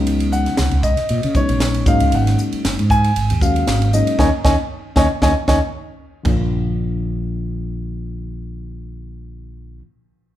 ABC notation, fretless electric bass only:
X:1
M:4/4
L:1/16
Q:"Swing 16ths" 1/4=116
K:Bbmix
V:1 name="Fretless electric bass" clef=bass
_D,,4 D,, D,,2 z B,, _D, z B,,,3 A,,, D,, | A,,,2 z2 _G,,, A,,3 A,,, E,,3 A,,,3 z | E,, z E,, z3 E,, z E,, z E,, z4 z | B,,,16- |
B,,,16 |]